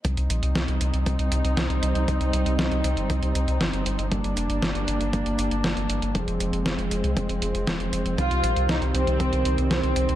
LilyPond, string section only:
\new Staff \with { instrumentName = "String section" } { \clef bass \time 4/4 \key c \minor \tempo 4 = 118 << { ees'1~ | ees'1 | d'1 | c'1~ |
c'1 | } \\ { <g c'>1~ | <g c'>1 | <g bes>1 | <f aes>1 |
<ees g>1 | } >> }